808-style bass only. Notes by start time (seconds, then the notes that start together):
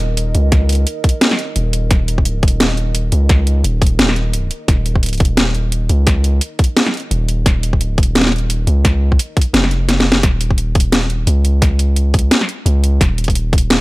Already playing: D#1
0.35 C#2
1.56 D#1
1.91 D#1
2.43 D#1
3.12 C#2
3.64 D#1
3.99 D#1
4.68 D#1
5.20 D#1
5.90 C#2
7.11 D#1
7.46 D#1
7.98 D#1
8.67 C#2
9.54 F1
10.23 D#1
11.27 C#2
12.66 C#2
13.01 D#1